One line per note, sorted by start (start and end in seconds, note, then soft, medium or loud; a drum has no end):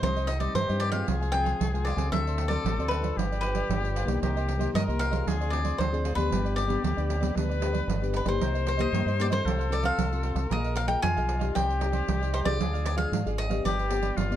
0.02 0.47 C2 medium
0.02 0.52 C3 soft
0.02 0.27 G3 soft
0.02 0.27 C4 medium
0.02 0.15 D#4 soft
0.02 0.57 D#4 medium
0.02 0.27 D#4 medium
0.02 0.15 G4 soft
0.02 0.30 C5 medium
0.02 0.15 C5 soft
0.02 0.15 D#5 soft
0.02 pandeiro medium
0.16 0.27 G4 soft
0.16 0.27 C5 medium
0.16 0.28 D#5 medium
0.16 pandeiro soft
0.27 0.40 D#5 medium
0.27 muted cavaquinho stroke soft
0.27 pandeiro medium
0.39 0.62 G3 medium
0.39 0.63 C4 medium
0.39 0.63 D#4 medium
0.39 0.53 G4 medium
0.39 0.53 C5 medium
0.39 0.53 D5 medium
0.39 0.53 D#5 medium
0.39 pandeiro medium
0.54 0.66 G2 medium
0.54 1.05 G2 medium
0.54 0.66 D#4 soft
0.54 0.67 G4 soft
0.54 1.09 G4 medium
0.54 0.82 C5 medium
0.54 0.67 C5 soft
0.54 0.67 D#5 soft
0.54 pandeiro medium
0.69 1.02 G2 medium
0.69 0.90 G3 medium
0.69 0.91 C4 medium
0.69 0.91 D#4 medium
0.69 0.92 G4 medium
0.69 0.91 C5 medium
0.69 0.90 D#5 medium
0.69 pandeiro soft
0.80 0.91 D5 medium
0.80 pandeiro medium
0.91 1.29 G#3 medium
0.91 1.29 C4 medium
0.91 1.29 F4 medium
0.91 1.05 G4 medium
0.91 1.05 C5 medium
0.91 1.05 D#5 medium
0.91 1.31 F5 medium
0.91 pandeiro medium
1.07 1.52 C2 medium
1.07 1.57 F3 soft
1.07 1.19 G4 medium
1.07 2.11 G#4 loud
1.07 1.20 C5 soft
1.07 1.20 F5 soft
1.07 1.19 G#5 medium
1.07 pandeiro medium
1.21 1.31 C5 soft
1.21 1.31 F5 medium
1.21 1.31 G#5 medium
1.21 pandeiro soft
1.32 1.58 G#3 medium
1.32 1.58 C4 medium
1.32 1.58 F4 medium
1.32 1.81 G5 medium
1.32 muted cavaquinho stroke soft
1.32 pandeiro medium
1.44 1.71 C5 medium
1.44 1.71 F5 medium
1.44 1.70 G#5 medium
1.44 pandeiro soft
1.60 1.93 C2 medium
1.60 2.09 F3 medium
1.60 pandeiro medium
1.73 1.95 G#3 medium
1.73 1.95 C4 medium
1.73 1.95 F4 medium
1.73 1.85 C5 soft
1.73 1.85 F5 soft
1.73 1.85 G#5 medium
1.73 pandeiro soft
1.85 1.97 G4 medium
1.85 1.98 C5 medium
1.85 2.12 D5 medium
1.85 1.97 F5 medium
1.85 1.96 G#5 medium
1.85 pandeiro medium
1.96 2.09 C#2 medium
1.96 2.46 A3 medium
1.96 2.46 C4 medium
1.96 2.46 F#4 medium
1.96 2.11 C5 medium
1.96 2.10 F5 medium
1.96 2.10 G#5 medium
1.96 pandeiro medium
2.12 2.56 D2 medium
2.12 2.62 D3 medium
2.12 2.24 F#4 medium
2.12 3.19 A4 loud
2.12 2.24 A4 soft
2.12 2.25 C5 medium
2.12 2.25 D5 medium
2.12 2.48 E5 medium
2.12 pandeiro medium
2.27 2.37 A4 medium
2.27 2.37 C5 medium
2.27 2.37 D5 medium
2.27 pandeiro soft
2.38 muted cavaquinho stroke soft
2.38 pandeiro medium
2.48 2.72 A3 medium
2.48 2.72 C4 medium
2.48 2.72 F#4 medium
2.48 2.63 A4 soft
2.48 2.63 C5 medium
2.48 2.86 D5 medium
2.48 2.63 D5 medium
2.48 pandeiro medium
2.63 2.75 A1 loud
2.63 3.14 A2 soft
2.63 2.77 F#4 soft
2.63 2.77 A4 medium
2.63 2.77 C5 medium
2.63 2.77 D5 soft
2.63 pandeiro medium
2.77 3.11 D2 medium
2.77 2.99 A3 medium
2.77 3.00 C4 medium
2.77 3.00 F#4 medium
2.77 3.03 A4 medium
2.77 3.03 C5 medium
2.77 3.02 D5 medium
2.77 pandeiro soft
2.88 3.38 B4 medium
2.88 pandeiro medium
3.00 3.37 D4 medium
3.00 3.37 F4 medium
3.00 3.37 B4 medium
3.00 3.16 C5 medium
3.00 3.15 D5 medium
3.00 pandeiro medium
3.05 3.16 A4 medium
3.15 3.61 G1 medium
3.15 3.66 G3 soft
3.15 3.29 F4 medium
3.15 4.22 G4 loud
3.15 3.30 G4 medium
3.15 3.30 B4 medium
3.15 3.30 D5 medium
3.15 pandeiro medium
3.32 3.43 G4 medium
3.32 3.43 B4 medium
3.32 3.43 D5 medium
3.32 pandeiro soft
3.40 3.66 D4 medium
3.40 3.66 F4 medium
3.40 3.90 B4 medium
3.40 3.66 B4 medium
3.40 muted cavaquinho stroke soft
3.40 pandeiro medium
3.55 3.82 G4 medium
3.55 3.81 B4 medium
3.55 3.81 D5 medium
3.55 pandeiro medium
3.68 4.03 G1 medium
3.68 4.18 D3 medium
3.68 pandeiro medium
3.80 4.03 D4 medium
3.80 4.04 F4 medium
3.80 4.04 B4 medium
3.80 3.95 D5 medium
3.85 3.95 G4 soft
3.85 3.96 B4 soft
3.85 pandeiro soft
3.96 4.07 F4 medium
3.96 4.08 G4 medium
3.96 4.07 B4 medium
3.96 4.07 D5 medium
3.96 pandeiro medium
4.05 4.19 B1 medium
4.05 4.55 A#3 medium
4.05 4.55 D#4 medium
4.05 4.55 G4 medium
4.05 4.20 B4 medium
4.05 4.20 D5 medium
4.05 pandeiro medium
4.09 4.21 G4 medium
4.20 4.67 C2 medium
4.20 4.70 C3 medium
4.20 4.34 D#4 medium
4.20 4.71 G4 loud
4.20 4.34 A#4 soft
4.20 4.34 C5 medium
4.20 4.35 D#5 medium
4.20 pandeiro medium
4.36 4.47 A#4 medium
4.36 4.47 C5 medium
4.36 4.47 D#5 medium
4.36 pandeiro soft
4.48 muted cavaquinho stroke soft
4.48 pandeiro medium
4.57 4.81 A#3 medium
4.57 4.81 D#4 medium
4.57 4.81 G4 medium
4.57 4.73 A#4 soft
4.57 4.72 C5 medium
4.57 4.72 D#5 medium
4.57 pandeiro soft
4.73 4.85 G2 loud
4.73 5.23 G3 medium
4.73 4.86 D#4 soft
4.73 4.86 A#4 soft
4.73 5.29 A#4 loud
4.73 4.86 C5 soft
4.73 4.82 D#5 loud
4.73 4.86 D#5 medium
4.73 pandeiro medium
4.87 5.21 C2 medium
4.87 5.09 A#3 medium
4.87 5.09 D#4 medium
4.87 5.09 G4 medium
4.87 5.11 A#4 medium
4.87 5.11 C5 medium
4.87 5.10 D#5 medium
4.87 pandeiro soft
4.99 5.48 F5 loud
4.99 pandeiro medium
5.10 5.47 C4 medium
5.10 5.47 F4 medium
5.10 5.47 G#4 medium
5.10 5.25 A#4 medium
5.10 5.25 C5 medium
5.10 5.24 D#5 medium
5.10 pandeiro medium
5.25 5.71 D2 medium
5.25 5.76 D3 medium
5.25 5.38 F4 medium
5.25 5.39 G#4 medium
5.25 6.05 G#4 loud
5.25 5.39 C5 medium
5.25 5.39 D5 medium
5.25 pandeiro medium
5.40 5.52 G#4 medium
5.40 5.52 C5 medium
5.40 5.52 D5 medium
5.40 pandeiro soft
5.50 5.76 C4 medium
5.50 5.76 F4 medium
5.50 5.76 G#4 medium
5.50 5.78 D5 medium
5.50 muted cavaquinho stroke soft
5.50 pandeiro medium
5.64 5.91 G#4 medium
5.64 5.90 C5 medium
5.64 5.90 D5 medium
5.64 pandeiro medium
5.78 6.12 D2 medium
5.78 6.28 D3 medium
5.78 6.15 C5 medium
5.78 pandeiro medium
5.92 6.14 C4 medium
5.92 6.14 F4 medium
5.92 6.14 G#4 medium
5.92 6.04 G#4 soft
5.92 6.04 C5 soft
5.92 6.04 D5 medium
5.92 pandeiro soft
6.04 6.17 F4 medium
6.04 6.17 G#4 medium
6.04 6.16 C5 medium
6.04 6.15 D5 medium
6.04 pandeiro medium
6.15 6.28 D2 loud
6.15 6.65 B3 medium
6.15 6.65 D4 medium
6.15 6.65 G4 medium
6.15 6.30 G#4 medium
6.15 6.56 B4 medium
6.15 6.30 C5 medium
6.15 6.29 D5 medium
6.15 pandeiro medium
6.29 6.76 G1 medium
6.29 6.80 G3 medium
6.29 6.43 D4 soft
6.29 7.37 G4 medium
6.29 6.44 G4 medium
6.29 6.44 B4 medium
6.29 6.44 D5 medium
6.29 pandeiro medium
6.45 6.55 G4 medium
6.45 6.55 B4 medium
6.45 6.55 D5 medium
6.45 pandeiro soft
6.56 7.31 D5 medium
6.56 muted cavaquinho stroke soft
6.56 pandeiro medium
6.67 6.91 B3 medium
6.67 6.91 D4 medium
6.67 6.91 G4 medium
6.67 6.82 G4 medium
6.67 6.81 B4 medium
6.67 6.81 D5 medium
6.67 pandeiro medium
6.83 6.95 D2 medium
6.83 7.33 D3 medium
6.83 6.95 D4 soft
6.83 6.96 G4 soft
6.83 6.96 B4 soft
6.83 6.96 D5 medium
6.83 pandeiro medium
6.96 7.30 D2 medium
6.96 7.19 B3 medium
6.96 7.19 D4 medium
6.96 7.19 G4 medium
6.96 7.21 G4 medium
6.96 7.21 B4 medium
6.96 7.19 D5 medium
6.96 pandeiro soft
7.10 pandeiro medium
7.20 7.30 B3 medium
7.20 7.31 D4 medium
7.20 7.31 G4 medium
7.20 7.35 G4 medium
7.20 7.34 B4 medium
7.20 7.34 D5 medium
7.20 pandeiro medium
7.35 7.80 D2 medium
7.35 7.85 G3 medium
7.35 7.57 B3 medium
7.35 7.58 D4 medium
7.35 7.48 D4 medium
7.35 7.58 G4 soft
7.35 7.48 G4 medium
7.35 8.14 B4 loud
7.35 7.49 B4 medium
7.35 7.48 D5 medium
7.35 pandeiro medium
7.49 7.60 G4 medium
7.49 7.60 B4 medium
7.49 7.61 D5 medium
7.49 pandeiro soft
7.61 7.86 B3 medium
7.61 7.86 D4 soft
7.61 7.87 G4 medium
7.61 muted cavaquinho stroke soft
7.61 pandeiro medium
7.73 8.00 G4 medium
7.73 8.00 B4 medium
7.73 7.99 D5 medium
7.73 pandeiro medium
7.87 8.21 G1 medium
7.87 8.38 D3 medium
7.87 pandeiro medium
8.01 8.23 B3 medium
8.01 8.24 D4 medium
8.01 8.24 G4 medium
8.01 8.12 G4 soft
8.01 8.13 B4 soft
8.01 8.13 D5 medium
8.01 pandeiro soft
8.13 8.26 D4 medium
8.13 8.26 G4 medium
8.13 8.25 B4 medium
8.13 8.28 B4 medium
8.13 8.24 D5 medium
8.13 pandeiro medium
8.25 8.37 G1 medium
8.25 8.75 A#3 medium
8.25 8.75 D#4 medium
8.25 8.75 G4 medium
8.25 8.39 G4 medium
8.25 8.39 B4 medium
8.25 8.67 C5 medium
8.25 8.39 D5 medium
8.25 pandeiro medium
8.40 8.85 C2 medium
8.40 8.90 C3 medium
8.40 8.53 D#4 soft
8.40 8.53 A#4 soft
8.40 9.47 C5 loud
8.40 8.53 C5 soft
8.40 8.53 D#5 medium
8.40 pandeiro medium
8.54 8.65 A#4 medium
8.54 8.65 C5 medium
8.54 8.65 D#5 medium
8.54 pandeiro soft
8.66 8.81 C5 medium
8.66 muted cavaquinho stroke soft
8.66 pandeiro medium
8.77 8.88 A#3 medium
8.77 8.88 D#4 medium
8.77 8.88 G4 medium
8.77 8.91 A#4 soft
8.77 8.91 C5 medium
8.77 8.91 D#5 medium
8.77 9.21 D#5 medium
8.77 pandeiro medium
8.92 9.04 G2 medium
8.92 9.43 G3 medium
8.92 9.09 A#3 medium
8.92 9.05 D#4 soft
8.92 9.09 D#4 soft
8.92 9.05 A#4 soft
8.92 9.05 C5 soft
8.92 9.05 D#5 soft
8.92 pandeiro medium
9.06 9.39 G2 medium
9.06 9.30 A#4 medium
9.06 9.30 C5 medium
9.06 9.29 D#5 medium
9.06 pandeiro soft
9.19 9.28 A#3 medium
9.19 9.28 D#4 medium
9.19 9.28 G4 medium
9.19 9.26 D5 medium
9.19 pandeiro medium
9.30 9.67 C4 medium
9.30 9.44 A#4 soft
9.30 9.44 C5 medium
9.30 9.73 C5 medium
9.30 9.43 D#5 medium
9.30 pandeiro medium
9.45 9.90 C2 medium
9.45 9.95 C3 soft
9.45 9.57 F4 soft
9.45 10.51 A4 loud
9.45 9.58 A4 medium
9.45 9.58 C5 medium
9.45 9.57 F5 medium
9.45 pandeiro medium
9.59 9.70 A4 medium
9.59 9.70 C5 medium
9.59 9.70 F5 medium
9.59 pandeiro soft
9.69 9.95 C4 medium
9.69 9.96 F4 medium
9.69 9.96 A4 medium
9.69 9.85 D5 medium
9.69 muted cavaquinho stroke soft
9.69 pandeiro medium
9.83 10.10 A4 medium
9.83 10.10 C5 medium
9.83 10.09 F5 medium
9.83 10.47 F5 loud
9.83 pandeiro medium
9.98 10.31 C2 medium
9.98 10.48 C3 medium
9.98 pandeiro medium
10.12 10.47 C4 medium
10.12 10.47 F4 medium
10.12 10.47 A4 medium
10.12 10.23 A4 soft
10.12 10.24 C5 soft
10.12 10.24 F5 medium
10.12 pandeiro soft
10.23 10.36 F4 medium
10.23 10.36 A4 medium
10.23 10.35 C5 medium
10.23 10.34 F5 medium
10.23 pandeiro medium
10.35 10.47 C2 medium
10.35 10.49 A4 medium
10.35 10.49 C5 medium
10.35 10.48 F5 medium
10.35 pandeiro medium
10.50 10.95 A#1 medium
10.50 11.01 A#3 medium
10.50 10.75 F4 medium
10.50 10.63 G#4 soft
10.50 10.75 G#4 soft
10.50 11.04 A#4 medium
10.50 10.63 A#4 medium
10.50 10.76 D#5 medium
10.50 10.63 D#5 soft
10.50 10.76 D#5 medium
10.50 10.63 F5 medium
10.50 pandeiro medium
10.64 10.75 A#4 soft
10.64 10.75 D#5 medium
10.64 10.75 F5 medium
10.64 pandeiro soft
10.76 10.88 F5 loud
10.76 pandeiro medium
10.87 11.11 F4 medium
10.87 11.11 G#4 medium
10.87 11.01 A#4 medium
10.87 11.01 D#5 medium
10.87 11.11 D#5 medium
10.87 11.01 F5 medium
10.87 11.02 G5 medium
10.87 pandeiro medium
11.02 11.14 F2 medium
11.02 11.53 F3 medium
11.02 11.57 F4 medium
11.02 11.14 G#4 medium
11.02 11.15 A#4 soft
11.02 11.15 D#5 soft
11.02 11.15 F5 soft
11.02 11.55 G#5 loud
11.02 pandeiro medium
11.16 11.50 B1 medium
11.16 11.38 F4 medium
11.16 11.39 G#4 medium
11.16 11.40 A#4 medium
11.16 11.39 D#5 medium
11.16 11.38 F5 medium
11.16 pandeiro soft
11.29 pandeiro medium
11.39 11.77 D#4 medium
11.39 11.77 G4 medium
11.39 11.54 A#4 soft
11.39 11.77 D5 medium
11.39 11.53 D#5 medium
11.39 11.53 F5 medium
11.39 pandeiro medium
11.55 12.00 C2 medium
11.55 12.06 C4 medium
11.55 11.67 D#4 medium
11.55 11.67 G4 medium
11.55 12.60 G4 loud
11.55 11.68 C5 medium
11.55 11.67 D5 medium
11.55 12.36 G5 medium
11.55 pandeiro medium
11.68 11.79 G4 medium
11.68 11.80 C5 medium
11.68 11.80 D5 medium
11.68 pandeiro soft
11.80 12.06 D#4 medium
11.80 12.06 G4 soft
11.80 12.06 D5 medium
11.80 muted cavaquinho stroke soft
11.80 pandeiro medium
11.92 12.19 G4 medium
11.92 12.19 C5 medium
11.92 12.19 D5 medium
11.92 pandeiro medium
12.08 12.41 C2 loud
12.08 12.58 G3 medium
12.08 pandeiro medium
12.21 12.43 D#4 medium
12.21 12.43 G4 medium
12.21 12.32 G4 soft
12.21 12.33 C5 soft
12.21 12.33 D5 medium
12.21 12.44 D5 medium
12.21 pandeiro soft
12.33 12.45 D#4 medium
12.33 12.45 G4 medium
12.33 12.45 C5 medium
12.33 12.39 C5 medium
12.33 12.44 D5 medium
12.33 pandeiro medium
12.45 12.57 C2 medium
12.45 12.94 D4 medium
12.45 12.94 F4 medium
12.45 12.59 G4 medium
12.45 12.95 G#4 medium
12.45 12.58 C5 medium
12.45 12.58 D5 medium
12.45 12.85 D5 loud
12.45 pandeiro medium
12.60 13.04 D2 medium
12.60 13.10 D3 medium
12.60 12.72 D4 soft
12.60 12.72 G#4 medium
12.60 13.34 G#4 medium
12.60 12.72 D5 medium
12.60 12.72 F5 medium
12.60 pandeiro medium
12.73 12.84 G#4 medium
12.73 12.84 D5 medium
12.73 12.84 F5 medium
12.73 pandeiro soft
12.85 12.97 D5 medium
12.85 muted cavaquinho stroke soft
12.85 pandeiro medium
12.96 13.20 D4 medium
12.96 13.20 F4 medium
12.96 13.20 G#4 medium
12.96 13.11 G#4 soft
12.96 13.10 D5 medium
12.96 13.10 F5 medium
12.96 13.35 F5 medium
12.96 pandeiro medium
13.12 13.23 G#2 medium
13.12 13.62 D3 medium
13.12 13.24 D4 soft
13.12 13.25 G#4 soft
13.12 13.25 D5 medium
13.12 13.25 F5 soft
13.12 pandeiro medium
13.26 13.59 G#1 medium
13.26 13.48 D4 medium
13.26 13.48 F4 medium
13.26 13.48 G#4 medium
13.26 13.50 G#4 medium
13.26 13.49 D5 medium
13.26 13.48 F5 medium
13.26 pandeiro soft
13.38 13.63 D#5 loud
13.38 pandeiro medium
13.49 13.86 B3 medium
13.49 13.86 D4 medium
13.49 13.86 G4 medium
13.49 13.64 G#4 medium
13.49 13.63 D5 medium
13.49 13.63 F5 medium
13.49 pandeiro medium
13.64 14.09 G1 medium
13.64 14.14 G3 medium
13.64 13.77 D4 medium
13.64 14.18 G4 loud
13.64 13.78 G4 medium
13.64 13.78 B4 medium
13.64 14.36 D5 medium
13.64 13.78 D5 medium
13.64 pandeiro medium
13.79 13.90 G4 soft
13.79 13.90 B4 medium
13.79 13.90 D5 medium
13.79 pandeiro soft
13.90 14.25 B3 medium
13.90 14.26 D4 soft
13.90 14.26 G4 medium
13.90 muted cavaquinho stroke soft
13.90 pandeiro medium
14.02 14.29 G4 medium
14.02 14.29 B4 medium
14.02 14.28 D5 medium
14.02 pandeiro medium
14.17 14.36 G1 medium
14.17 14.36 D3 medium
14.17 14.36 F4 loud
14.17 pandeiro medium
14.31 14.36 B3 medium
14.31 14.36 D4 medium
14.31 14.36 G4 medium
14.31 14.36 G4 soft
14.31 14.36 B4 soft
14.31 14.36 D5 medium
14.31 pandeiro soft